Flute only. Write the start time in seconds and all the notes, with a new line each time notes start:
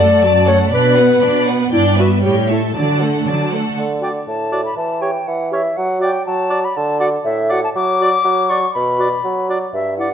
3.78 F#5
4.02 G5
4.28 A5
4.65 B5
4.78 A5
5.01 G5
5.27 F#5
5.53 E5
5.77 F#5
6.02 G5
6.26 A5
6.65 B5
6.77 A5
7.00 F#5
7.24 E5
7.51 F#5
7.64 A5
7.75 D6
8.50 C#6
8.74 B5
9.73 E5
9.98 F#5